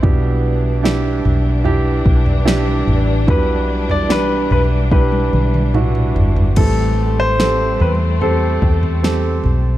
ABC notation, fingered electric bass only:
X:1
M:4/4
L:1/8
Q:1/4=73
K:Em
V:1 name="Fingered electric bass" clef=bass
B,,,3 B,,,2 B,,,2 A,,, | B,,,3 B,,,2 B,,,2 G,,, | A,,,3 E,,2 E,,2 B,,, |]